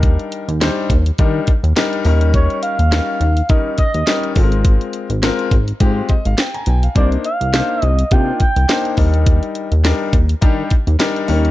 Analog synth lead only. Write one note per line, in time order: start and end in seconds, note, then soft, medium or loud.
2.34 2.61 C#5 loud
2.63 3.50 F5 loud
3.49 3.78 D#5 medium
3.79 4.32 D#5 medium
6.97 7.09 D5 medium
7.25 7.84 F5 loud
7.84 8.14 D#5 loud
8.12 8.40 G5 loud
8.41 8.94 G5 medium